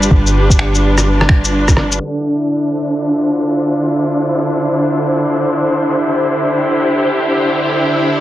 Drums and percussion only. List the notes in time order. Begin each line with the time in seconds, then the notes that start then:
0.02 shaker
0.11 kick
0.27 shaker
0.50 kick, shaker
0.59 finger snap
0.75 shaker
0.98 cross-stick, shaker
1.21 cross-stick
1.29 finger snap, kick
1.44 shaker
1.68 kick, cross-stick, shaker
1.77 cross-stick
1.92 shaker